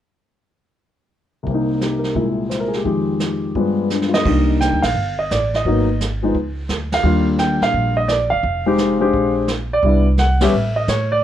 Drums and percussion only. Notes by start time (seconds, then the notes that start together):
1.47 brush sweep, kick
1.82 snare, hi-hat pedal
2.04 snare
2.16 brush sweep, kick
2.51 snare, hi-hat pedal
2.73 snare
2.85 brush sweep, kick
3.20 snare, hi-hat pedal
3.55 brush sweep, kick
3.90 snare, hi-hat pedal
4.02 snare
4.14 snare
4.25 brush sweep, kick, crash
4.61 snare, hi-hat pedal
4.83 snare, ride
4.96 brush sweep
5.31 snare, hi-hat pedal
5.54 snare
5.65 brush sweep, kick
6.01 snare, hi-hat pedal
6.34 brush sweep, kick
6.69 snare, hi-hat pedal
6.92 snare, ride
7.05 brush sweep
7.39 snare, hi-hat pedal
7.62 snare
7.74 brush sweep, kick
8.08 snare, hi-hat pedal
8.43 brush sweep, kick
8.78 snare, hi-hat pedal
9.13 brush sweep, kick
9.48 snare, hi-hat pedal
9.83 brush sweep, kick
10.18 snare, hi-hat pedal
10.41 snare, ride
10.53 brush sweep
10.88 snare, hi-hat pedal